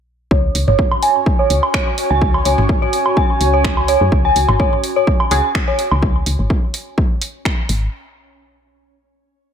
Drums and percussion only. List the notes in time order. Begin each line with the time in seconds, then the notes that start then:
0.31 kick
0.55 open hi-hat
0.68 mid tom
0.79 kick
0.91 low woodblock
1.03 open hi-hat
1.26 kick
1.50 open hi-hat
1.63 low woodblock
1.74 finger snap, kick
1.98 open hi-hat
2.22 kick
2.34 low woodblock
2.45 open hi-hat
2.58 mid tom
2.69 kick
2.93 open hi-hat
3.06 low woodblock
3.17 kick
3.41 open hi-hat
3.64 finger snap, kick
3.77 low woodblock
3.88 open hi-hat
4.12 kick
4.36 open hi-hat
4.49 mid tom, low woodblock
4.60 kick
4.84 open hi-hat
5.07 kick
5.20 low woodblock
5.31 open hi-hat
5.55 finger snap, kick
5.79 open hi-hat
5.91 low woodblock
6.02 kick
6.26 open hi-hat
6.50 kick
6.74 open hi-hat
6.98 kick
7.22 open hi-hat
7.45 finger snap, kick
7.69 open hi-hat